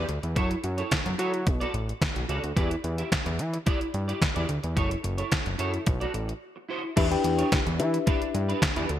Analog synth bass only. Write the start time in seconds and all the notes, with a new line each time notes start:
0.09 D2
0.23 E2
0.36 F#2
0.64 F#2
1.06 F#2
1.19 F#3
1.47 B1
1.74 A1
2.16 B1
2.29 C#2
2.44 D2
2.57 E2
2.84 E2
3.26 E2
3.39 E3
3.94 G2
4.36 E2
4.49 D2
4.64 E2
4.77 F#1
5.04 F#1
5.46 F#1
5.59 F#2
5.87 B1
6.14 A1
6.97 E2
7.24 E2
7.67 E2
7.80 E3
8.35 G2
8.77 E2
8.90 D2